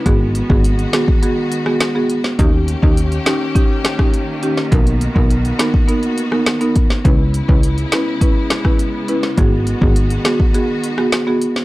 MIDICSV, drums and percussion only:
0, 0, Header, 1, 2, 480
1, 0, Start_track
1, 0, Key_signature, 5, "minor"
1, 0, Tempo, 582524
1, 48, Time_signature, 4, 2, 24, 8
1, 9597, End_track
2, 0, Start_track
2, 0, Title_t, "Drums"
2, 48, Note_on_c, 9, 42, 65
2, 49, Note_on_c, 9, 36, 111
2, 130, Note_off_c, 9, 42, 0
2, 131, Note_off_c, 9, 36, 0
2, 289, Note_on_c, 9, 42, 73
2, 371, Note_off_c, 9, 42, 0
2, 410, Note_on_c, 9, 36, 99
2, 493, Note_off_c, 9, 36, 0
2, 531, Note_on_c, 9, 42, 71
2, 614, Note_off_c, 9, 42, 0
2, 650, Note_on_c, 9, 42, 48
2, 732, Note_off_c, 9, 42, 0
2, 768, Note_on_c, 9, 38, 116
2, 768, Note_on_c, 9, 42, 82
2, 777, Note_on_c, 9, 37, 94
2, 850, Note_off_c, 9, 38, 0
2, 851, Note_off_c, 9, 42, 0
2, 860, Note_off_c, 9, 37, 0
2, 889, Note_on_c, 9, 36, 94
2, 972, Note_off_c, 9, 36, 0
2, 1011, Note_on_c, 9, 42, 75
2, 1093, Note_off_c, 9, 42, 0
2, 1249, Note_on_c, 9, 42, 80
2, 1332, Note_off_c, 9, 42, 0
2, 1368, Note_on_c, 9, 37, 92
2, 1450, Note_off_c, 9, 37, 0
2, 1487, Note_on_c, 9, 38, 115
2, 1487, Note_on_c, 9, 42, 65
2, 1497, Note_on_c, 9, 37, 90
2, 1569, Note_off_c, 9, 42, 0
2, 1570, Note_off_c, 9, 38, 0
2, 1579, Note_off_c, 9, 37, 0
2, 1727, Note_on_c, 9, 42, 69
2, 1809, Note_off_c, 9, 42, 0
2, 1848, Note_on_c, 9, 38, 74
2, 1930, Note_off_c, 9, 38, 0
2, 1969, Note_on_c, 9, 36, 112
2, 1969, Note_on_c, 9, 42, 67
2, 2051, Note_off_c, 9, 36, 0
2, 2051, Note_off_c, 9, 42, 0
2, 2208, Note_on_c, 9, 42, 72
2, 2291, Note_off_c, 9, 42, 0
2, 2330, Note_on_c, 9, 36, 94
2, 2413, Note_off_c, 9, 36, 0
2, 2450, Note_on_c, 9, 42, 69
2, 2533, Note_off_c, 9, 42, 0
2, 2570, Note_on_c, 9, 42, 47
2, 2652, Note_off_c, 9, 42, 0
2, 2688, Note_on_c, 9, 38, 118
2, 2689, Note_on_c, 9, 42, 81
2, 2698, Note_on_c, 9, 37, 98
2, 2771, Note_off_c, 9, 38, 0
2, 2771, Note_off_c, 9, 42, 0
2, 2780, Note_off_c, 9, 37, 0
2, 2928, Note_on_c, 9, 36, 98
2, 2930, Note_on_c, 9, 42, 73
2, 3010, Note_off_c, 9, 36, 0
2, 3013, Note_off_c, 9, 42, 0
2, 3169, Note_on_c, 9, 38, 124
2, 3170, Note_on_c, 9, 42, 79
2, 3179, Note_on_c, 9, 37, 96
2, 3251, Note_off_c, 9, 38, 0
2, 3252, Note_off_c, 9, 42, 0
2, 3261, Note_off_c, 9, 37, 0
2, 3288, Note_on_c, 9, 36, 89
2, 3288, Note_on_c, 9, 37, 98
2, 3370, Note_off_c, 9, 36, 0
2, 3370, Note_off_c, 9, 37, 0
2, 3408, Note_on_c, 9, 42, 68
2, 3491, Note_off_c, 9, 42, 0
2, 3648, Note_on_c, 9, 42, 70
2, 3730, Note_off_c, 9, 42, 0
2, 3769, Note_on_c, 9, 38, 73
2, 3852, Note_off_c, 9, 38, 0
2, 3888, Note_on_c, 9, 36, 104
2, 3889, Note_on_c, 9, 42, 67
2, 3971, Note_off_c, 9, 36, 0
2, 3971, Note_off_c, 9, 42, 0
2, 4011, Note_on_c, 9, 42, 50
2, 4093, Note_off_c, 9, 42, 0
2, 4130, Note_on_c, 9, 42, 70
2, 4212, Note_off_c, 9, 42, 0
2, 4250, Note_on_c, 9, 36, 90
2, 4332, Note_off_c, 9, 36, 0
2, 4371, Note_on_c, 9, 42, 71
2, 4454, Note_off_c, 9, 42, 0
2, 4490, Note_on_c, 9, 42, 49
2, 4573, Note_off_c, 9, 42, 0
2, 4609, Note_on_c, 9, 38, 116
2, 4609, Note_on_c, 9, 42, 83
2, 4618, Note_on_c, 9, 37, 94
2, 4691, Note_off_c, 9, 38, 0
2, 4692, Note_off_c, 9, 42, 0
2, 4701, Note_off_c, 9, 37, 0
2, 4728, Note_on_c, 9, 36, 96
2, 4811, Note_off_c, 9, 36, 0
2, 4850, Note_on_c, 9, 42, 72
2, 4932, Note_off_c, 9, 42, 0
2, 4967, Note_on_c, 9, 42, 53
2, 5049, Note_off_c, 9, 42, 0
2, 5089, Note_on_c, 9, 42, 77
2, 5172, Note_off_c, 9, 42, 0
2, 5207, Note_on_c, 9, 37, 93
2, 5289, Note_off_c, 9, 37, 0
2, 5326, Note_on_c, 9, 42, 64
2, 5327, Note_on_c, 9, 38, 107
2, 5336, Note_on_c, 9, 37, 90
2, 5409, Note_off_c, 9, 38, 0
2, 5409, Note_off_c, 9, 42, 0
2, 5419, Note_off_c, 9, 37, 0
2, 5446, Note_on_c, 9, 42, 53
2, 5528, Note_off_c, 9, 42, 0
2, 5567, Note_on_c, 9, 42, 69
2, 5569, Note_on_c, 9, 36, 90
2, 5649, Note_off_c, 9, 42, 0
2, 5651, Note_off_c, 9, 36, 0
2, 5688, Note_on_c, 9, 38, 76
2, 5771, Note_off_c, 9, 38, 0
2, 5808, Note_on_c, 9, 36, 111
2, 5809, Note_on_c, 9, 42, 68
2, 5890, Note_off_c, 9, 36, 0
2, 5891, Note_off_c, 9, 42, 0
2, 6049, Note_on_c, 9, 42, 72
2, 6131, Note_off_c, 9, 42, 0
2, 6169, Note_on_c, 9, 36, 99
2, 6251, Note_off_c, 9, 36, 0
2, 6290, Note_on_c, 9, 42, 73
2, 6372, Note_off_c, 9, 42, 0
2, 6409, Note_on_c, 9, 42, 48
2, 6491, Note_off_c, 9, 42, 0
2, 6527, Note_on_c, 9, 38, 118
2, 6527, Note_on_c, 9, 42, 80
2, 6537, Note_on_c, 9, 37, 92
2, 6609, Note_off_c, 9, 38, 0
2, 6610, Note_off_c, 9, 42, 0
2, 6619, Note_off_c, 9, 37, 0
2, 6766, Note_on_c, 9, 36, 100
2, 6769, Note_on_c, 9, 42, 71
2, 6849, Note_off_c, 9, 36, 0
2, 6851, Note_off_c, 9, 42, 0
2, 7006, Note_on_c, 9, 38, 118
2, 7007, Note_on_c, 9, 42, 78
2, 7016, Note_on_c, 9, 37, 91
2, 7089, Note_off_c, 9, 38, 0
2, 7089, Note_off_c, 9, 42, 0
2, 7098, Note_off_c, 9, 37, 0
2, 7125, Note_on_c, 9, 37, 94
2, 7126, Note_on_c, 9, 36, 93
2, 7208, Note_off_c, 9, 36, 0
2, 7208, Note_off_c, 9, 37, 0
2, 7245, Note_on_c, 9, 42, 69
2, 7328, Note_off_c, 9, 42, 0
2, 7485, Note_on_c, 9, 42, 72
2, 7567, Note_off_c, 9, 42, 0
2, 7607, Note_on_c, 9, 38, 72
2, 7689, Note_off_c, 9, 38, 0
2, 7725, Note_on_c, 9, 42, 65
2, 7727, Note_on_c, 9, 36, 109
2, 7808, Note_off_c, 9, 42, 0
2, 7809, Note_off_c, 9, 36, 0
2, 7966, Note_on_c, 9, 42, 73
2, 8049, Note_off_c, 9, 42, 0
2, 8088, Note_on_c, 9, 36, 94
2, 8171, Note_off_c, 9, 36, 0
2, 8207, Note_on_c, 9, 42, 73
2, 8290, Note_off_c, 9, 42, 0
2, 8326, Note_on_c, 9, 42, 50
2, 8408, Note_off_c, 9, 42, 0
2, 8445, Note_on_c, 9, 38, 116
2, 8445, Note_on_c, 9, 42, 80
2, 8454, Note_on_c, 9, 37, 93
2, 8527, Note_off_c, 9, 38, 0
2, 8528, Note_off_c, 9, 42, 0
2, 8537, Note_off_c, 9, 37, 0
2, 8567, Note_on_c, 9, 36, 99
2, 8650, Note_off_c, 9, 36, 0
2, 8688, Note_on_c, 9, 42, 73
2, 8771, Note_off_c, 9, 42, 0
2, 8928, Note_on_c, 9, 42, 76
2, 9011, Note_off_c, 9, 42, 0
2, 9046, Note_on_c, 9, 37, 96
2, 9129, Note_off_c, 9, 37, 0
2, 9166, Note_on_c, 9, 38, 118
2, 9166, Note_on_c, 9, 42, 68
2, 9176, Note_on_c, 9, 37, 89
2, 9248, Note_off_c, 9, 42, 0
2, 9249, Note_off_c, 9, 38, 0
2, 9258, Note_off_c, 9, 37, 0
2, 9406, Note_on_c, 9, 42, 70
2, 9489, Note_off_c, 9, 42, 0
2, 9527, Note_on_c, 9, 38, 72
2, 9597, Note_off_c, 9, 38, 0
2, 9597, End_track
0, 0, End_of_file